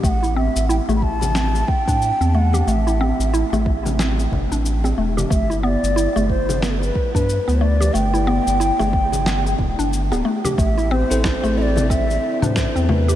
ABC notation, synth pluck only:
X:1
M:4/4
L:1/16
Q:"Swing 16ths" 1/4=91
K:Ador
V:1 name="Synth pluck"
A, E C2 E A, z2 C z2 D2 C A, G | A, E C2 E A, z2 C z2 D2 C A, G | A, E B,2 E A, z2 B, z2 D2 B, A, G | A, E B,2 E A, z2 B, z2 D2 B, A, G |
A, E C2 E A, z2 C z2 D2 C A, G |]